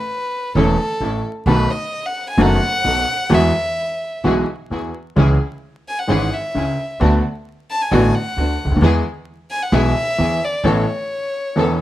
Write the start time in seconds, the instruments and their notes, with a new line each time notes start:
Already playing: violin B4
0.55 upright bass E1, upright piano E1 E2 E3 A3 C#4 A4, string section C#4 E4 A4, violin A4
1.00 upright bass A1, upright piano A1 A2, string section C#4 E4 A4
1.46 upright bass B1, upright piano B1 B2 D#3 A3 B3 F#4, string section B3 D#4 A4, violin B4
1.71 violin D#5
2.06 violin F#5
2.30 violin G#5
2.38 upright bass F#1, upright piano F#1 F#2 D#3 A3 B3 F#4, string section B3 D#4 A4
2.42 violin F#5
2.84 upright piano B1 B2, upright bass B1, string section B3 D#4 A4
3.30 upright piano E2 E3 G#3 B3 F#4, upright bass E2, string section E4 F#4 G#4
3.35 violin E5
4.24 upright bass B1, upright piano B1 B2 E3 G#3 B3 F#4, string section E4 F#4 G#4
4.70 upright bass E2, upright piano E2 E3, string section E4 F#4 G#4
5.16 upright piano C#2 C#3 E3 G#3 C#4 G#4, upright bass C#2, string section C#4 E4 G#4
5.88 violin G#5
5.99 violin F#5
6.07 upright piano G#1 G#2 E3 G#3 C#4 G#4, upright bass G#1, string section C#4 E4 G#4
6.34 violin E5
6.54 upright bass C#2, upright piano C#2 C#3, string section C#4 E4 G#4
7.00 upright piano D2 D3 A3 B3 F#4, upright bass D2, string section B3 D4 F#4
7.70 violin A5
7.82 violin G#5
7.91 upright bass A1, upright piano A1 A2 D3 A3 B3 F#4, string section B3 D4 F#4
8.15 violin F#5
8.37 upright bass D2, upright piano D2 D3, string section B3 D4 F#4
8.65 upright bass C#2, upright piano C#2
8.71 upright bass D2, upright piano D2
8.76 upright bass D#2, upright piano D#2
8.81 upright bass E2, upright piano E2 E3 G#3 B3 G#4, string section B3 E4 G#4
9.51 violin G#5
9.63 violin F#5
9.72 upright bass B1, upright piano B1 B2 E3 G#3 B3 G#4, string section B3 E4 G#4, violin E5
10.18 upright piano E2 E3, upright bass E2, string section B3 E4 G#4
10.44 violin D5
10.63 upright bass A1, upright piano A1 A2 E3 B3 C#4 A4, string section B3 C#4 A4
10.67 violin C#5
11.56 upright piano E1 E2 E3 B3 C#4 A4, string section B3 C#4 A4